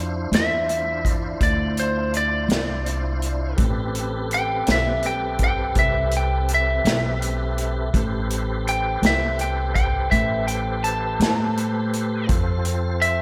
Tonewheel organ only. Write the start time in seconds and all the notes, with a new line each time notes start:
Already playing: D4 E4 F4 C5
3.56 C4 G4 A4 B4
7.93 G4 A4 B4 C5
12.27 C4 F4 A4 C5